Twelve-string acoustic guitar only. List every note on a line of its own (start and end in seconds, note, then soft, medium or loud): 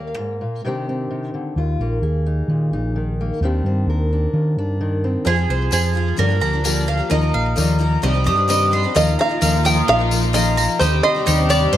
5.25 5.37 F3 medium
5.25 5.38 C4 medium
5.25 5.36 F4 medium
5.25 5.35 G#4 medium
5.36 5.71 C4 soft
5.36 5.71 F4 soft
5.36 5.72 G#4 medium
5.71 5.92 F3 medium
5.71 5.93 C4 medium
5.71 5.95 F4 medium
5.71 5.96 G#4 medium
5.93 6.17 F3 medium
5.93 6.18 C4 medium
5.93 6.18 F4 medium
5.93 6.18 G#4 medium
6.16 6.29 G2 medium
6.16 6.30 D3 medium
6.16 6.30 F3 medium
6.16 6.29 A#3 medium
6.16 6.29 D4 medium
6.16 6.27 G4 medium
6.29 6.39 F3 soft
6.29 6.40 A#3 medium
6.29 6.41 D4 medium
6.29 6.41 G4 medium
6.40 6.53 F3 medium
6.40 6.53 A#3 medium
6.40 6.52 D4 medium
6.40 6.51 G4 medium
6.53 6.63 F3 soft
6.53 6.64 A#3 soft
6.53 6.64 D4 soft
6.53 6.64 G4 soft
6.64 6.88 G2 medium
6.64 6.88 D3 medium
6.64 6.85 F3 medium
6.64 6.86 A#3 medium
6.64 6.87 D4 medium
6.64 6.87 G4 medium
6.86 6.99 F3 medium
6.86 6.98 A#3 medium
6.86 6.98 D4 medium
6.86 6.96 G4 medium
6.97 7.09 F3 soft
6.97 7.10 A#3 soft
6.97 7.11 D4 medium
6.97 7.10 G4 medium
7.10 7.22 D#3 medium
7.10 7.22 F3 medium
7.10 7.23 A#3 medium
7.10 7.21 D#4 medium
7.10 7.20 A#4 medium
7.21 7.56 A#3 medium
7.21 7.56 D#4 medium
7.21 7.56 A#4 medium
7.56 7.80 D#3 medium
7.56 7.77 F3 medium
7.56 7.78 A#3 medium
7.56 7.79 D#4 medium
7.56 7.80 A#4 medium
7.79 8.03 F3 medium
7.79 8.03 A#3 medium
7.79 8.03 D#4 medium
7.79 8.04 A#4 medium
8.02 8.14 C3 medium
8.02 8.15 D#3 medium
8.02 8.15 G3 medium
8.02 8.14 C4 medium
8.02 8.13 D4 medium
8.02 8.12 G4 medium
8.13 8.23 G3 soft
8.13 8.24 C4 medium
8.13 8.25 D4 medium
8.13 8.26 G4 medium
8.24 8.37 G3 medium
8.24 8.37 C4 medium
8.24 8.36 D4 medium
8.24 8.35 G4 medium
8.36 8.47 G3 soft
8.36 8.48 C4 soft
8.36 8.48 D4 soft
8.36 8.49 G4 medium
8.48 8.72 C3 medium
8.48 8.72 D#3 medium
8.48 8.70 G3 medium
8.48 8.71 C4 medium
8.48 8.72 D4 loud
8.48 8.73 G4 loud
8.71 8.84 G3 medium
8.71 8.84 C4 medium
8.71 8.83 D4 medium
8.71 8.82 G4 medium
8.83 8.95 G3 soft
8.83 8.95 C4 medium
8.83 8.95 D4 medium
8.83 8.95 G4 medium
8.94 9.07 D#3 medium
8.94 9.07 F3 medium
8.94 9.07 A#3 medium
8.94 9.07 F4 medium
8.94 9.05 A#4 loud
9.06 9.30 A#3 soft
9.06 9.30 F4 soft
9.06 9.28 A#4 medium
9.29 9.41 A#3 soft
9.29 9.41 F4 medium
9.29 9.41 A#4 medium
9.41 9.53 D#3 medium
9.41 9.53 F3 medium
9.41 9.54 A#3 medium
9.41 9.53 F4 medium
9.41 9.51 A#4 medium
9.52 9.63 A#3 soft
9.52 9.64 F4 soft
9.52 9.65 A#4 medium
9.64 9.76 F3 medium
9.64 9.76 A#3 medium
9.64 9.75 F4 medium
9.64 9.73 A#4 medium
9.75 10.00 A#3 soft
9.75 9.99 F4 soft
9.75 9.97 A#4 medium
9.99 10.10 A#3 medium
9.99 10.11 F4 medium
9.99 10.11 A#4 medium
10.11 10.23 F3 medium
10.11 10.23 A#3 medium
10.11 10.22 F4 medium
10.11 10.20 A#4 medium
10.22 10.33 A#3 soft
10.22 10.33 F4 soft
10.22 10.34 A#4 soft
10.33 10.57 D#3 medium
10.33 10.55 F3 medium
10.33 10.56 A#3 medium
10.33 10.57 F4 loud
10.33 10.58 A#4 medium
10.56 10.80 F3 medium
10.56 10.80 A#3 medium
10.56 10.81 F4 medium
10.56 10.81 A#4 medium
10.79 11.15 D#3 medium
10.79 11.15 G3 medium
10.79 11.15 C4 medium
10.79 11.13 G4 medium
11.15 11.26 C4 soft
11.15 11.26 D4 medium
11.15 11.26 G4 medium
11.26 11.38 D#3 medium
11.26 11.38 G3 medium
11.26 11.38 C4 medium
11.26 11.37 D4 loud
11.26 11.36 G4 medium
11.37 11.48 C4 soft
11.37 11.50 D4 soft
11.37 11.49 G4 medium
11.49 11.61 G3 medium
11.49 11.61 C4 medium
11.49 11.61 D4 medium
11.49 11.59 G4 medium
11.60 11.77 C4 soft
11.60 11.77 D4 medium
11.60 11.77 G4 medium